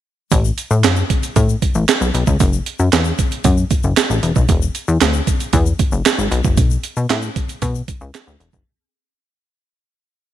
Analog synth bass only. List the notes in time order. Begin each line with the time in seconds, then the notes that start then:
0.32 A1
0.71 A2
0.84 F#2
1.36 A2
1.75 A1
2.01 B1
2.14 B1
2.27 C#2
2.40 F#1
2.80 F#2
2.93 E2
3.45 F#2
3.84 F#1
4.10 A1
4.23 E1
4.36 B1
4.49 E1
4.88 E2
5.01 D2
5.53 E2
5.92 F#1
6.18 G#1
6.32 B1
6.45 F#1
6.58 B1
6.97 B2
7.10 A2
7.62 B2
8.01 C#2
8.27 D2
8.40 E1
8.53 F#1